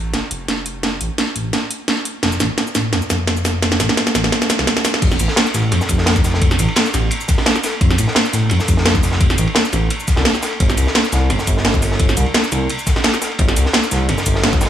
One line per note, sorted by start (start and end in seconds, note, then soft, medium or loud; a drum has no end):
0.00 0.15 A1 medium
0.14 0.22 F1 medium
0.14 snare soft
0.14 closed hi-hat medium
0.31 1.00 F1 medium
0.31 closed hi-hat medium
0.48 snare medium
0.48 closed hi-hat medium
0.66 closed hi-hat medium
0.83 snare medium
0.83 closed hi-hat medium
1.01 1.09 A1 medium
1.01 closed hi-hat medium
1.18 snare medium
1.18 closed hi-hat medium
1.36 1.52 A1 medium
1.36 closed hi-hat medium
1.53 snare medium
1.53 closed hi-hat medium
1.71 closed hi-hat medium
1.88 snare medium
1.88 closed hi-hat medium
2.05 closed hi-hat medium
2.23 2.39 F1 medium
2.23 snare medium
2.23 closed hi-hat medium
2.32 shaker soft
2.40 2.49 A1 medium
2.40 snare medium
2.40 closed hi-hat medium
2.40 shaker medium
2.58 snare medium
2.58 closed hi-hat medium
2.67 shaker soft
2.75 2.94 A1 medium
2.75 snare medium
2.75 closed hi-hat medium
2.75 shaker medium
2.93 3.01 F1 medium
2.93 snare medium
2.93 closed hi-hat medium
3.02 shaker soft
3.10 3.79 F1 medium
3.10 snare medium
3.10 closed hi-hat medium
3.10 shaker medium
3.27 snare medium
3.27 closed hi-hat medium
3.37 shaker soft
3.45 snare medium
3.45 open hi-hat medium
3.45 shaker medium
3.62 snare medium
3.62 closed hi-hat medium
3.72 snare medium
3.72 shaker soft
3.80 3.88 A1 medium
3.80 snare medium
3.80 closed hi-hat medium
3.80 shaker medium
3.89 snare medium
3.97 snare loud
3.97 closed hi-hat medium
4.07 snare medium
4.07 shaker soft
4.15 4.31 A1 medium
4.15 snare medium
4.15 closed hi-hat medium
4.15 shaker medium
4.24 snare medium
4.32 snare loud
4.32 closed hi-hat medium
4.42 snare medium
4.42 shaker soft
4.50 snare loud
4.50 closed hi-hat medium
4.50 shaker medium
4.59 4.66 C2 medium
4.59 snare medium
4.67 snare loud
4.67 closed hi-hat medium
4.77 snare loud
4.77 shaker soft
4.85 snare loud
4.85 open hi-hat medium
4.85 shaker medium
4.94 snare medium
5.02 5.18 F1 medium
5.02 kick loud
5.02 closed hi-hat medium
5.02 crash loud
5.02 ride medium
5.12 snare medium
5.12 shaker soft
5.20 5.28 A1 medium
5.20 closed hi-hat loud
5.20 ride medium
5.20 shaker medium
5.28 snare soft
5.36 snare loud
5.36 closed hi-hat medium
5.36 ride medium
5.46 shaker soft
5.54 5.73 A1 medium
5.54 snare soft
5.54 closed hi-hat medium
5.54 ride medium
5.54 shaker medium
5.72 5.80 F1 medium
5.72 snare soft
5.72 closed hi-hat medium
5.72 ride medium
5.81 snare soft
5.81 shaker soft
5.89 6.58 F1 loud
5.89 kick medium
5.89 closed hi-hat loud
5.89 ride medium
5.89 shaker medium
5.98 snare medium
6.06 snare loud
6.06 closed hi-hat medium
6.06 ride medium
6.16 kick loud
6.16 snare soft
6.16 shaker soft
6.24 snare soft
6.24 open hi-hat medium
6.24 ride medium
6.24 shaker medium
6.34 snare soft
6.42 kick loud
6.42 closed hi-hat medium
6.42 ride medium
6.51 snare soft
6.51 shaker soft
6.59 6.67 A1 medium
6.59 closed hi-hat medium
6.59 ride medium
6.59 shaker medium
6.68 ride soft
6.76 snare loud
6.76 closed hi-hat medium
6.76 ride medium
6.86 shaker soft
6.94 7.10 A1 medium
6.94 snare soft
6.94 closed hi-hat medium
6.94 ride medium
6.94 shaker medium
7.11 closed hi-hat medium
7.11 ride medium
7.21 shaker soft
7.28 kick loud
7.28 snare soft
7.28 closed hi-hat medium
7.28 ride medium
7.28 shaker medium
7.38 snare medium
7.38 snare soft
7.46 snare loud
7.46 closed hi-hat medium
7.46 ride medium
7.55 snare soft
7.55 ride soft
7.55 shaker soft
7.64 snare medium
7.64 open hi-hat medium
7.64 ride medium
7.64 shaker medium
7.72 ride soft
7.81 7.97 F1 loud
7.81 kick loud
7.81 closed hi-hat medium
7.81 ride medium
7.91 snare soft
7.91 shaker soft
7.98 8.07 A1 medium
7.98 closed hi-hat medium
7.98 ride medium
7.98 shaker medium
8.08 snare soft
8.15 snare loud
8.15 closed hi-hat medium
8.15 ride medium
8.25 shaker soft
8.33 8.52 A1 medium
8.33 snare soft
8.33 closed hi-hat medium
8.33 ride medium
8.33 shaker medium
8.49 8.59 F1 medium
8.49 snare soft
8.49 closed hi-hat medium
8.49 ride medium
8.60 snare soft
8.60 shaker soft
8.68 9.37 F1 loud
8.68 kick medium
8.68 closed hi-hat medium
8.68 ride medium
8.68 shaker medium
8.77 snare medium
8.85 snare loud
8.85 closed hi-hat medium
8.85 ride medium
8.95 kick loud
8.95 snare medium
8.95 shaker soft
9.03 snare soft
9.03 open hi-hat medium
9.03 ride medium
9.03 shaker medium
9.12 snare medium
9.21 kick loud
9.21 closed hi-hat medium
9.21 ride loud
9.30 snare soft
9.30 shaker soft
9.38 9.47 A1 medium
9.38 closed hi-hat medium
9.38 ride medium
9.38 shaker medium
9.47 ride soft
9.55 snare loud
9.55 closed hi-hat medium
9.55 ride medium
9.65 shaker soft
9.73 9.89 A1 medium
9.73 snare soft
9.73 closed hi-hat medium
9.73 ride medium
9.73 shaker medium
9.90 closed hi-hat medium
9.90 ride medium
10.00 shaker soft
10.08 kick loud
10.08 snare soft
10.08 closed hi-hat medium
10.08 ride medium
10.08 shaker medium
10.16 10.25 C2 medium
10.16 snare medium
10.16 snare soft
10.25 snare loud
10.25 closed hi-hat medium
10.25 ride medium
10.34 snare soft
10.34 shaker soft
10.43 snare medium
10.43 open hi-hat medium
10.43 ride medium
10.43 shaker medium
10.53 ride soft
10.60 10.76 G1 medium
10.60 kick loud
10.60 closed hi-hat medium
10.60 ride loud
10.70 snare soft
10.70 shaker soft
10.77 10.86 C2 medium
10.77 closed hi-hat medium
10.77 ride medium
10.77 shaker medium
10.87 snare soft
10.95 snare loud
10.95 closed hi-hat medium
10.95 ride medium
11.04 shaker soft
11.12 11.32 C2 medium
11.12 snare soft
11.12 closed hi-hat medium
11.12 ride medium
11.12 shaker medium
11.30 11.38 G1 medium
11.30 snare soft
11.30 closed hi-hat medium
11.30 ride medium
11.39 snare soft
11.39 shaker soft
11.47 12.16 G1 medium
11.47 kick medium
11.47 closed hi-hat medium
11.47 ride medium
11.47 shaker medium
11.57 snare soft
11.65 snare loud
11.65 closed hi-hat medium
11.65 ride medium
11.73 kick loud
11.73 snare soft
11.73 shaker soft
11.82 snare soft
11.82 open hi-hat medium
11.82 ride medium
11.82 shaker medium
11.92 snare soft
12.00 kick loud
12.00 closed hi-hat medium
12.00 ride medium
12.09 snare soft
12.09 shaker soft
12.17 12.26 C2 medium
12.17 closed hi-hat medium
12.17 ride medium
12.17 shaker medium
12.26 ride soft
12.34 snare loud
12.34 closed hi-hat medium
12.34 ride medium
12.44 shaker soft
12.52 12.68 C2 medium
12.52 snare soft
12.52 closed hi-hat medium
12.52 ride medium
12.52 shaker medium
12.69 closed hi-hat medium
12.69 ride medium
12.79 shaker soft
12.87 kick loud
12.87 snare soft
12.87 closed hi-hat loud
12.87 ride medium
12.87 shaker medium
12.96 snare medium
12.96 snare soft
13.04 snare loud
13.04 closed hi-hat medium
13.04 ride medium
13.13 snare soft
13.13 ride soft
13.13 shaker soft
13.21 snare medium
13.21 open hi-hat medium
13.21 ride medium
13.21 shaker medium
13.31 ride soft
13.39 13.55 G1 loud
13.39 kick loud
13.39 closed hi-hat medium
13.39 ride medium
13.48 snare soft
13.48 shaker soft
13.57 13.65 C2 medium
13.57 closed hi-hat loud
13.57 ride medium
13.57 shaker medium
13.66 snare soft
13.73 snare loud
13.73 closed hi-hat medium
13.73 ride medium
13.83 shaker soft
13.91 14.10 C2 medium
13.91 snare soft
13.91 closed hi-hat medium
13.91 ride medium
13.91 shaker medium
14.09 14.17 G1 medium
14.09 snare soft
14.09 closed hi-hat medium
14.09 ride medium
14.18 snare medium
14.18 shaker soft
14.26 14.69 G1 medium
14.26 kick medium
14.26 closed hi-hat loud
14.26 ride medium
14.26 shaker medium
14.35 snare medium
14.44 snare loud
14.44 closed hi-hat medium
14.44 ride medium
14.53 kick loud
14.53 snare medium
14.53 shaker soft
14.61 snare medium
14.61 open hi-hat medium
14.61 ride medium
14.61 shaker medium
14.65 snare medium
14.65 ride medium